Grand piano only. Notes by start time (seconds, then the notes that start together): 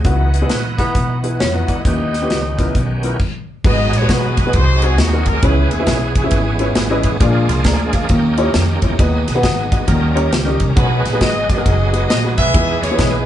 Already playing: C4 G#4
0.05 C#3 B3 D#4 E4 F#4
0.42 B3 D#4 E4 G#4
0.79 B3 D#4 E4 G#4
1.23 B3 D#4 E4 G#4
1.54 B3 D#4 E4 F#4
1.85 D#3 B3 C#4 E4 G4
2.22 B3 C#4 E4 G4
2.59 B3 C#4 E4 A#4
3.03 B3 C#4 E4 A#4
3.65 G#2 B3 D#4 F#4 G#4 B4
4.01 B3 D#4 F#4 G#4 C#5
4.46 B3 D#4 F#4 G#4 B4
4.54 C3
4.83 C4 D#4 F#4 G#4 C5
5.12 C4 D#4 F#4 G#4 A#4
5.43 C#3 C#4 E4 G#4 B4 C#5
5.79 C#4 E4 G#4 B4 E5
6.24 C#4 E4 G#4 B4 E5
6.60 C#4 E4 G#4 B4 C#5
6.90 C#4 E4 G#4 B4 D#5
7.21 A#2 D4 F4 G#4 A#4 D5
7.49 C6
7.65 D5 A#5
7.94 G#4 F5
8.10 D#3
8.38 D#4 E4 G4 A#4 C#5
8.55 G4
8.82 E4 C#5
8.99 D#3 B3 D#4 G#4 B4 D#5
9.35 B3 D#4 G#4 B4 F#5
9.44 F#5 D#6
9.71 F#4 D#5
9.88 D#3
10.15 C#4 D#4 G4 A#4 C#5
10.45 C#4 D#4 G4 A#4 D#5
10.76 B2 B3 D#4 F#4 G#4 B4
11.13 B3 D#4 F#4 G#4 B4
11.57 B3 D#4 F#4 G#4 A#4
11.93 B3 D#4 F#4 G#4 B4
12.24 B3 D#4 F#4 G#4 B4
12.54 E3 B3 D#4 E4 G#4 B4
12.91 B3 D#4 E4 G#4 C#5